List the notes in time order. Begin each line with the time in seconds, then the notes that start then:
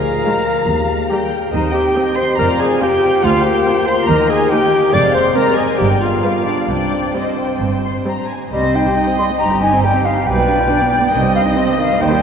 Already playing: D2 F3 G#4 A#4 F5 A#5
0.25 G#3 F4
0.68 D#2 A#3 G4
1.11 G3 G4 G5
1.52 D#2 C4 D#4 G4 C5 D#5
1.73 G4 G5
1.96 C4 G4 D#5
2.16 C5 C6
2.38 F1 F2 F4 A#4 D5 A#5
2.59 G#4 G#5
2.81 C4 F4 G4 C5 G5
3.23 D2 A#3 F4 F5
3.44 G4 G5
3.67 A#3 F4
3.86 C5 C6
4.07 D#2 D#4 A#4 D#5 A#5
4.29 G#4 G#5
4.50 A#3 D#4 G4 G5
4.93 F1 F2 G#3 C4 D5 F5 D6
5.14 C5 C6
5.35 G#3 C4 A#4 D#5 A#5
5.57 G#4 G#5
5.78 G1 G2 G3 B3 G4 D5 G5
6.00 F4 F5
6.23 G3 B3 F5
6.46 D4 D5
6.69 C2 C3 G3 C4 D4 D5 G5
7.15 G3 C4 C5 D#5
7.39 G5
7.62 G1 G2
7.86 C6
8.06 G3 C4 A#5
8.31 G#5
8.52 C2 C3 G3 C5 D#5
8.63 C4
8.75 D#4 G5
8.86 G4
8.97 D#4 D#5
9.07 C4
9.18 G3 C6
9.30 C4
9.39 G1 G2 D#4 G4 A#5
9.51 G4
9.61 D#4 G#5
9.74 C4
9.83 G3 G5
9.95 C4
10.05 D#4 F5
10.17 G4
10.26 B1 B2 G3 B4 D5 G5
10.38 B3
10.48 D4
10.59 F4
10.69 D4 D5
10.80 B3
10.91 G3
11.01 B3
11.12 C2 C3 D#3 C5 D#5
11.23 G3
11.35 C4 F5
11.45 D#4
11.56 C4 D#5
11.68 G3
11.79 D#3 F5
11.91 G3
12.00 D#2 D#3 G3 A#4 C5 G5
12.12 G3